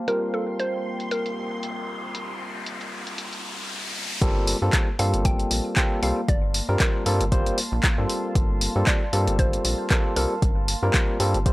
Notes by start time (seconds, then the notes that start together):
Already playing: A#3 G4 C5 F5
0.08 G3 A#3 C4 F4 A#4 G5 C6, closed hi-hat, riser
0.34 A4
0.59 C5, closed hi-hat
1.00 closed hi-hat
1.11 A#4, closed hi-hat
1.26 closed hi-hat
1.63 closed hi-hat
2.15 closed hi-hat
2.66 closed hi-hat
2.81 closed hi-hat
3.07 closed hi-hat
3.18 closed hi-hat
3.33 closed hi-hat
4.22 G1 G3 A#3 C4 F4 A4 F5 A5 C6, kick, closed hi-hat
4.47 open hi-hat
4.62 G2 G3 A#3 C4 F4 A4
4.73 kick, clap, closed hi-hat
4.99 G2 G3 A#3 C4 F4 A4 F5, open hi-hat
5.14 G1, closed hi-hat
5.25 G5, kick, closed hi-hat
5.40 closed hi-hat
5.51 A#1, open hi-hat
5.76 G3 A#3 C4 F4 A4 G5, kick, clap, closed hi-hat
6.03 C2 G3 A#3 C4 F4 A4 F5, open hi-hat
6.28 G1 D5, kick, closed hi-hat
6.54 open hi-hat
6.69 G2 G3 A#3 C4 F4 A#4
6.80 A#4, kick, clap, closed hi-hat
7.06 G2 G3 A#3 C4 F4 A4, open hi-hat
7.21 G1, closed hi-hat
7.32 G3 A#3 C4 F4 C5, kick, closed hi-hat
7.46 closed hi-hat
7.58 open hi-hat
7.72 A#1
7.83 kick, clap, closed hi-hat
7.98 G2 G3 A#3 C4 F4 A4
8.10 open hi-hat
8.35 G1, kick, closed hi-hat
8.61 open hi-hat
8.76 G2 G3 A#3 C4 F4 A4
8.87 D5, kick, clap, closed hi-hat
9.13 G2 G3 A#3 C4 F4 A4, open hi-hat
9.28 G1, closed hi-hat
9.39 C5, kick, closed hi-hat
9.53 closed hi-hat
9.65 A#1, open hi-hat
9.90 G3 A#3 C4 F4 A4 A#4, kick, clap, closed hi-hat
10.16 C2 G3 A#3 C4 F4 A4 A#4, open hi-hat
10.42 G1, kick, closed hi-hat
10.68 open hi-hat
10.83 G2 G3 A#3 C4 F4 A#4
10.94 kick, clap, closed hi-hat
11.20 G2 G3 A#3 C4 F4 A4, open hi-hat
11.34 G1, closed hi-hat
11.46 G3 A#3 C4 F4 C5, kick, closed hi-hat